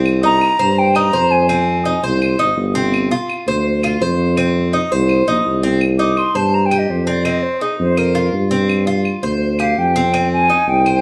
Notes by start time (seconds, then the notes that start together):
Already playing: C2 C4
0.06 claves
0.23 D#4 A#5
0.41 claves
0.59 G2 C5
0.79 G5
0.95 D#4 A#5, claves
1.13 F2 C5
1.31 G#5
1.49 C4, claves
1.85 D#4
2.03 C2 C5
2.22 claves
2.39 G#1 D#4
2.57 G1
2.75 C4
2.94 claves
3.11 F4
3.30 claves
3.47 D2 C5
3.83 F4, claves
4.01 F2 C5
4.37 C4, claves
4.73 D#4
4.91 C2 C5
5.09 claves
5.27 A#1 D#4
5.45 C2
5.63 C4
5.81 claves
5.99 D#4 D6
6.17 C6, claves
6.35 G2 C5 A5
6.54 A#5
6.66 G5
6.71 G4, claves
6.79 D#5
6.89 F2 C5
7.07 C4 D5
7.25 C4 D#5, claves
7.43 C5
7.61 D#4 G#4
7.79 F2 C5
7.97 A#4 C5, claves
8.15 F4
8.33 G2
8.51 C4
8.69 claves
8.87 F4
9.05 claves
9.23 D2 C5
9.59 G4 F5, claves
9.78 F2 G5
9.96 C4
10.14 C4, claves
10.32 G#5
10.50 D#4
10.67 C2 G5
10.86 C5, claves